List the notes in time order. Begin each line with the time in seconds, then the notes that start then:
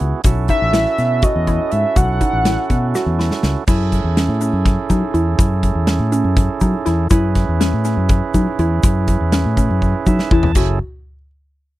Already playing: B3 E4 F#4 G#4
0.00 C#2, closed hi-hat
0.24 B1 C#4 E4 F#4 A4, kick, closed hi-hat, shaker
0.48 D#4 E5, kick, closed hi-hat
0.62 A1
0.73 E4, snare, closed hi-hat
0.98 B2, snare, closed hi-hat, shaker
1.22 F#4 D#5, kick, closed hi-hat, shaker
1.36 E2
1.47 E4, kick, closed hi-hat
1.71 G#2 E5, closed hi-hat
1.96 B1 F#4 F#5, kick, closed hi-hat, shaker
2.21 D#4, kick, closed hi-hat, shaker
2.33 A1
2.45 E4, snare, closed hi-hat
2.70 B2, kick, closed hi-hat
2.95 F#4, snare, shaker
3.06 E2
3.19 E4, snare
3.31 snare
3.43 C#2, snare, shaker
3.67 F#2 C#4 E4 G#4 A4, kick, crash, shaker
3.92 kick, closed hi-hat
4.04 E2
4.17 C#4, snare, closed hi-hat
4.29 A2
4.41 C#4, closed hi-hat, shaker
4.53 F#2
4.66 kick, snare, closed hi-hat
4.90 F#3 D#4, kick, closed hi-hat, shaker
5.14 E2 E4, closed hi-hat
5.39 F#2 E4, kick, closed hi-hat, shaker
5.63 kick, closed hi-hat
5.75 E2
5.87 C#4, snare, closed hi-hat
5.99 A2
6.12 C#4, closed hi-hat, shaker
6.24 F#2
6.37 kick, closed hi-hat
6.61 F#3 D#4, kick, closed hi-hat, shaker
6.86 E2 E4, snare, closed hi-hat
7.10 F#2 C#4 E4 G#4 B4, kick, closed hi-hat, shaker
7.35 kick, snare, closed hi-hat
7.49 E2
7.60 C#4, snare, closed hi-hat
7.73 A2
7.85 C#4, snare, closed hi-hat, shaker
7.97 F#2
8.09 kick, closed hi-hat
8.34 F#3 D#4, kick, closed hi-hat, shaker
8.59 E2 E4, closed hi-hat
8.83 F#2 E4, kick, closed hi-hat, shaker
9.08 kick, closed hi-hat
9.21 E2
9.32 C#4, snare, closed hi-hat
9.45 A2
9.57 C#4, kick, closed hi-hat, shaker
9.70 F#2
9.82 kick, shaker
10.06 F#3 D#4 E5, kick, shaker
10.19 snare
10.31 E2 E4 A5, kick
10.43 floor tom
10.55 F#1 C#4 E4 F#4 G#4 A4, kick, crash, shaker